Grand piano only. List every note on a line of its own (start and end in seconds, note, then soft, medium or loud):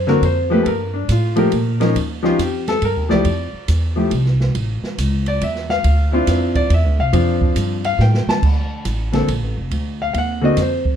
0.07 0.21 D3 medium
0.07 0.21 A#3 medium
0.07 0.21 C4 medium
0.07 0.22 F#4 medium
0.07 0.23 A#4 medium
0.25 0.51 C5 medium
0.50 0.64 F3 medium
0.50 0.65 A3 medium
0.50 0.65 A#3 medium
0.50 0.65 G4 medium
0.50 0.66 B4 medium
0.63 0.66 A4 medium
0.67 0.94 A#4 medium
0.94 1.09 D4 medium
1.12 1.38 F4 medium
1.36 1.50 F3 medium
1.36 1.51 A3 medium
1.36 1.51 A#3 medium
1.36 1.51 G4 medium
1.36 1.78 A#4 medium
1.80 1.94 F3 medium
1.80 1.94 C#4 medium
1.80 1.94 D#4 medium
1.80 1.95 A#4 medium
2.23 2.37 F3 medium
2.23 2.37 C#4 medium
2.23 2.37 D#4 medium
2.23 2.39 F4 medium
2.23 2.38 G4 medium
2.42 2.68 G4 medium
2.68 2.82 A4 medium
2.85 3.11 A#4 medium
3.09 3.23 F3 medium
3.09 3.24 A3 medium
3.09 3.24 E4 medium
3.09 3.24 G4 medium
3.09 4.08 D5 medium
3.96 4.10 F3 medium
3.96 4.10 A3 medium
3.96 4.10 E4 soft
3.96 4.11 G4 medium
5.28 5.42 D5 medium
5.43 5.70 E5 medium
5.70 6.24 F5 loud
6.12 6.68 C4 medium
6.12 6.68 D4 medium
6.12 6.67 E4 medium
6.12 6.68 F4 medium
6.56 6.70 D5 medium
6.74 6.99 E5 medium
7.00 7.53 F5 medium
7.13 7.79 F3 medium
7.13 7.79 C4 medium
7.13 7.79 D4 medium
7.13 7.80 F4 medium
7.85 7.99 F5 loud
8.01 8.28 G5 medium
8.29 8.82 A5 loud
9.12 9.26 D3 medium
9.12 9.27 A#3 medium
9.12 9.27 C4 medium
9.12 9.27 A4 medium
10.02 10.12 F5 medium
10.13 10.16 F5 medium
10.18 10.44 F#5 medium
10.41 10.56 D3 medium
10.41 10.56 A#3 medium
10.41 10.56 C4 medium
10.41 10.57 F#4 medium
10.41 10.58 D#5 medium
10.62 10.87 C5 medium